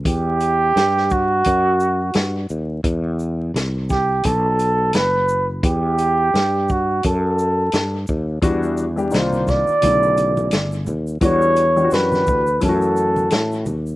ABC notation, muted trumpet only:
X:1
M:4/4
L:1/16
Q:"Swing 16ths" 1/4=86
K:Edor
V:1 name="Muted trumpet"
G6 F8 z2 | z6 G2 A4 B3 z | G6 F2 A6 z2 | z4 =c2 d8 z2 |
c4 B4 A6 z2 |]